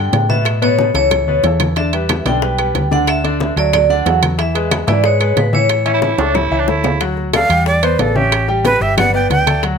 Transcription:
Already playing: grand piano D3 D4 G4, vibraphone G5
0.13 fingered electric bass A2, high bongo, low bongo, high conga, high timbale, low timbale
0.29 grand piano B2 B3 B4, vibraphone E5, high bongo, high conga
0.45 high bongo, high conga, high timbale, claves
0.62 grand piano B2 B3 B4, vibraphone C#5, high conga, high timbale
0.79 high bongo, high conga
0.94 fingered electric bass C#2, grand piano E3 E4 A4, vibraphone C#5, high bongo, high conga, high timbale
1.11 high bongo, high conga, low conga, high timbale, claves
1.27 fingered electric bass D2, grand piano B2 B3 B4, high conga
1.43 fingered electric bass E2, grand piano E3 E4 A4, low bongo, high conga, high timbale, low timbale
1.60 low bongo, high conga, high timbale, claves
1.76 grand piano D3 D4 D5, vibraphone E5, high bongo, high conga, high timbale
1.93 grand piano G3 G4 B4, high conga, high timbale
2.09 high bongo, high conga, high timbale, claves
2.25 fingered electric bass B1, grand piano D3 D4 D5, vibraphone G5, high bongo, high conga, high timbale
2.42 grand piano G3 G4 B4, high bongo, high conga
2.58 grand piano G3 G4 B4, high bongo, high conga, high timbale, claves
2.75 fingered electric bass D2, high bongo, low bongo, high conga, high timbale
2.91 grand piano D3 D4 D5, vibraphone F#5, high bongo, high conga
3.07 vibraphone E5, high bongo, high conga, high timbale, claves
3.24 grand piano D3 D4 D5, high conga, high timbale
3.40 high bongo, high conga
3.56 fingered electric bass D2, grand piano F#3 F#4 A4, vibraphone D5, high bongo, high conga, high timbale
3.73 vibraphone D5, high bongo, high conga, low conga, high timbale, claves
3.89 grand piano D3 D4 D5, vibraphone F#5, high bongo, high conga
4.05 fingered electric bass E2, grand piano F#3 F#4 A4, high bongo, low bongo, high conga, high timbale, low timbale
4.22 high bongo, high conga, high timbale, claves
4.38 grand piano E3 E4 E5, vibraphone E5, high bongo, high conga, high timbale
4.55 grand piano G#3 G#4 B4, high conga, high timbale
4.71 high bongo, high conga, high timbale, claves
4.87 fingered electric bass G#2, grand piano E3 E4 E5, vibraphone D5, high bongo, high conga, high timbale
5.04 grand piano G#3 G#4 B4, vibraphone C#5, high bongo, high conga
5.20 grand piano G#3 G#4 B4, high bongo, high conga, high timbale, claves
5.36 fingered electric bass A2, vibraphone B4, high bongo, low bongo, high conga, high timbale, low timbale
5.53 grand piano E3 E4 E5, vibraphone C#5, high bongo, high conga
5.69 high bongo, high conga, high timbale, claves
5.85 grand piano E3 E4 E5, baritone saxophone C#4, high conga, high timbale
5.94 baritone saxophone E4
6.02 baritone saxophone E4, high bongo, high conga
6.18 fingered electric bass C#2, grand piano A3 A4 C#5, baritone saxophone D4, high bongo, high conga, high timbale
6.35 baritone saxophone E4, low bongo, high conga, low conga, high timbale, claves
6.51 fingered electric bass C#2, grand piano E3 E4 E5, high conga
6.59 baritone saxophone D4
6.67 fingered electric bass D2, grand piano A3 A4 C#5, baritone saxophone E4, low bongo, high conga
6.84 low bongo, high conga, low timbale, claves
7.01 grand piano F#3 F#4 F#5, high bongo, high conga, high timbale
7.17 high bongo, high conga
7.33 grand piano A3 A4 D5, flute F5, high bongo, high conga, high timbale, claves
7.49 fingered electric bass E2, grand piano G3 G4 G5, high bongo, high timbale
7.66 flute D5, high bongo, high conga
7.83 grand piano B3 B4 D5, flute C5, high conga, high timbale, claves
7.99 fingered electric bass A1, grand piano B3 B4 D5, flute A4, high bongo, low bongo, high conga, high timbale, low timbale
8.15 grand piano C#4 C#5 E5, flute G4, high bongo, high conga
8.32 high bongo, high conga, high timbale, claves
8.48 grand piano G3 G4 G5, high bongo, high conga
8.65 flute B4, high bongo, high conga, high timbale
8.81 fingered electric bass G1, grand piano G3 G4 G5, flute E5, high bongo, high conga
8.97 grand piano B3 B4 D5, flute F#5, high bongo, high conga, low conga, high timbale, claves
9.14 grand piano B3 B4 D5, flute G5, high conga
9.30 fingered electric bass D2, flute G5, high bongo, low bongo, high conga, high timbale
9.47 grand piano A3 A4 D5, high bongo, high conga, high timbale, claves
9.63 grand piano F#3 F#4 F#5, high bongo, high conga, high timbale

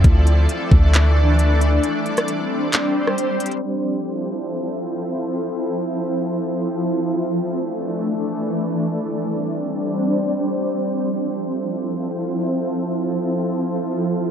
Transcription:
Already playing: ambient pad A4 D5
0.04 808-style bass D2, ambient pad E3 A3 D4, kick, closed hi-hat
0.27 closed hi-hat
0.49 closed hi-hat
0.71 808-style bass D2, kick
0.94 clap, closed hi-hat
1.39 closed hi-hat
1.61 closed hi-hat
1.83 ambient pad G3 C4 C5, closed hi-hat
2.06 closed hi-hat
2.17 cross-stick, closed hi-hat
2.28 closed hi-hat
2.73 clap, closed hi-hat
3.07 cross-stick
3.18 closed hi-hat
3.40 closed hi-hat
3.46 closed hi-hat
3.51 closed hi-hat
3.57 closed hi-hat
3.63 ambient pad F3 C4 E4 A4 C5
7.21 ambient pad E3 A3 D4 A4 D5
9.00 ambient pad G3 C4 D4 C5
10.79 ambient pad F3 E4 A4

